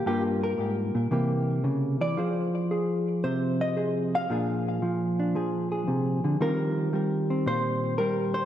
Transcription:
hollow-body jazz guitar
0.06 G2 G3 A#3 F4 G4
0.43 A#4
0.58 G#2
0.95 A#2
1.11 C3 E3 A#3 G4
1.64 C#3
2.01 E3 D5
2.17 F3 G#4 C5
2.71 G#4
3.24 C3 C5
3.61 D#5
3.77 G#4
4.15 F5
4.30 A#2 F3 D4 G#4
4.82 F3
5.20 D4
5.35 F3 G#4
5.72 G#4
5.88 C3
6.24 D3
6.41 D#3 G3 C4 F4 A#4
6.93 G3
7.30 C4
7.46 A#2 C5
7.98 G3 A#4
8.34 C5

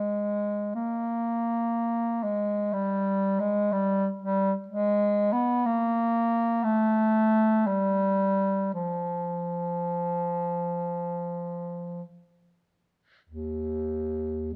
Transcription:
bass clarinet
Already playing: G#3
0.75 A#3
2.23 G#3
2.73 G3
3.40 G#3
3.72 G3
4.22 G3
4.68 G#3
5.32 B3
5.66 A#3
6.64 A3
7.67 G3
8.74 F3
13.30 D#2

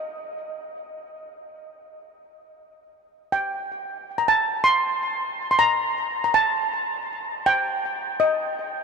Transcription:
steel pan
Already playing: D#5
3.32 G5
4.18 A#5
4.28 A5
4.64 C6
5.51 C6
5.59 A#5
6.24 A#5
6.34 A5
7.46 G5
8.20 D#5

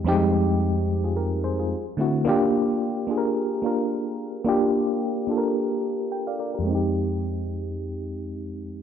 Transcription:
fm electric piano
Already playing: F2 G#3 C4 D#4 G4
0.04 F2 G3 C4 D#4 G4
0.12 G#3
1.04 F4 G#4
1.17 G4 A#4
1.44 G#4 C5
1.59 F4 G#4
1.97 D3 A3 C4 E4 F#4
2.25 A#3 D4 F4 G4
3.07 A#3 D4 F4 G#4
3.18 A#4
3.62 A#3 D4 F4 A#4
4.45 A#3 D4 F4 G4
5.27 A#3 D4 F4 A4
5.38 A#4
6.12 G5
6.27 D5 F5
6.39 A#4 D5
6.54 G4 A#4
6.59 F2 G#3
6.67 C4 D#4
6.75 G4

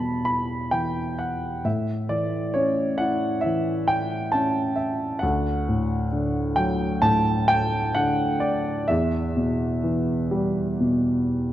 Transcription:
grand piano
Already playing: E2 B2 E3 G3 A5 B5
0.25 B5
0.71 E3 G5
1.19 F#5
1.65 A2 E5
2.09 E3 D5
2.54 C#4 C#5
2.98 E4 F#5
3.41 E5
3.45 E3
3.88 G5
4.32 C#4 A5
4.76 E5
5.19 D2 F#5
5.68 A2
6.12 D3
6.56 F#3 G5
7.02 A2 A5
7.48 G5
7.95 D3 F#5
8.40 D5
8.88 E2 E5
9.36 B2
9.84 E3
10.31 G3
10.80 B2

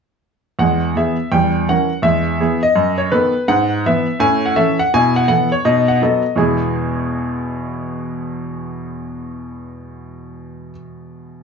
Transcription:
grand piano
0.59 E2 G#3 F#5
0.96 E3 B3 G#4 E5
1.32 E2 G3 G5
1.69 E3 C#4 A#4 F#5
2.02 E2 G#3 E5
2.40 E3 B3 G#4
2.63 D#5
2.76 F#2
2.98 C#5
3.12 D#3 B3 A4 B4
3.48 G#2 F#5
3.86 E3 B3 B4 E5
4.20 A2 C#4 G#5
4.46 F#5
4.56 E3 C#4 A4 E5
4.79 F#5
4.94 B2 E4 G#5
5.16 F#5
5.28 E3 B3 A4 F#5
5.52 C#5
5.65 B2 D#4 D#5
5.88 F#5
6.02 F#3 B3 A4 D#5
6.36 E2 B2 G#3 B3 E4 G#4 G#5

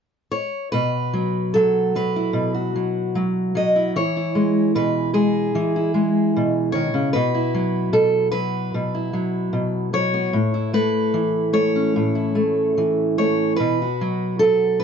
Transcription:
steel-string acoustic guitar
0.31 C#5
0.72 B2 B4
1.13 F#3
1.54 F#3 A4
1.95 F#3 B4
2.16 E4
2.33 B2
2.54 F#4
2.76 F#3
3.15 F#3
3.55 F#3 D#5
3.76 E4
3.96 E3 C#5
4.17 E4
4.35 G#3
4.75 B2 B4
5.14 G#3 G#4
5.55 E3
5.76 E4
5.94 G#3
6.36 B2
6.72 D#3 C#5
6.94 C#3
7.13 B2 B4
7.34 E4
7.54 F#3
7.93 B2 A4
8.31 F#3 B4
8.74 B2
8.95 E4
9.13 F#3
9.53 B2
9.93 F#3 C#5
10.14 B3
10.33 A2
10.54 E4
10.73 A3 B4
11.14 E3
11.53 A3 C#5
11.75 C#4
11.96 A2
12.15 E4
12.35 A3
12.78 E3
13.18 A3 C#5
13.56 B2 B4
13.82 F#4
14.01 F#3
14.39 F#3 A4
14.80 B4

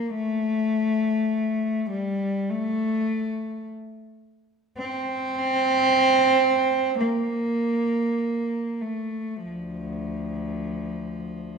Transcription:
cello
Already playing: A#3
0.14 A3
1.90 G3
2.50 A3
4.77 C4
7.00 A#3
8.81 A3
9.45 D2 F3

